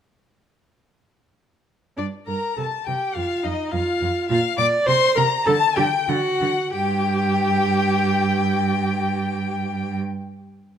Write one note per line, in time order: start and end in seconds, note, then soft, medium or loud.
1.97 2.06 G2 soft
1.97 2.05 D4 medium
1.97 2.05 D5 soft
1.97 2.06 D5 soft
2.27 2.36 G2 soft
2.27 2.56 A#4 medium
2.27 2.56 A#5 soft
2.27 2.59 A#5 soft
2.57 2.65 C3 soft
2.57 2.65 A4 medium
2.57 2.86 A5 soft
2.57 2.88 A5 medium
2.87 2.95 C3 soft
2.87 3.17 G4 medium
2.87 3.15 G5 medium
2.87 3.17 G5 medium
3.14 3.24 F2 soft
3.14 3.45 F4 medium
3.14 3.46 F5 medium
3.44 3.52 F2 medium
3.44 3.73 D#4 medium
3.44 3.71 D#5 medium
3.44 3.74 D#5 medium
3.72 3.81 F2 medium
3.72 4.28 F4 medium
3.72 4.28 F5 medium
3.72 4.29 F5 medium
4.01 4.09 F2 medium
4.28 4.38 A#2 medium
4.28 4.37 F4 medium
4.28 4.57 F5 medium
4.58 4.66 A#2 medium
4.58 4.88 D5 loud
4.58 4.66 D6 medium
4.86 4.95 C3 medium
4.86 5.15 C5 loud
4.86 5.19 C6 medium
4.86 5.18 C6 medium
5.16 5.25 C3 medium
5.16 5.24 A#4 medium
5.16 5.48 A#5 medium
5.16 5.46 A#5 medium
5.46 5.55 D3 medium
5.46 5.54 A4 loud
5.46 5.79 A5 loud
5.46 5.77 A5 loud
5.76 5.85 D3 medium
5.76 5.84 G4 loud
5.76 6.10 G5 medium
6.08 6.16 D3 medium
6.08 6.72 F#4 medium
6.08 6.72 F#5 medium
6.08 6.73 F#5 medium
6.41 6.49 D3 medium
6.73 9.96 G2 medium
6.73 9.95 G4 loud
6.73 9.95 G5 medium
6.73 9.96 G5 medium